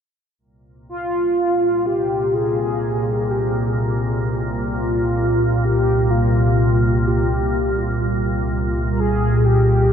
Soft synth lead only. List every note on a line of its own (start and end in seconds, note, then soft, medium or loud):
0.89 1.87 F4 medium
1.86 2.36 G4 medium
2.34 3.32 G#4 loud
3.31 4.00 G4 medium
4.70 5.66 F4 medium
5.64 6.12 G4 loud
6.10 7.08 F4 medium
7.07 7.78 G4 medium
8.90 9.01 A#4 medium
9.00 9.47 G#4 loud
9.45 9.93 G4 loud